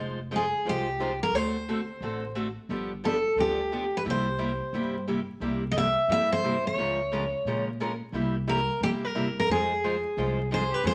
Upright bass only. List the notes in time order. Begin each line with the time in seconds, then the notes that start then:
Already playing: F1
0.65 C2
1.32 D2
2.00 A1
2.69 G1
3.36 D2
4.05 C2
4.73 G2
5.40 C2
6.08 G2
6.76 C#2
7.45 A#2
8.12 C2
8.80 G1
9.49 F2
10.17 C2
10.84 F2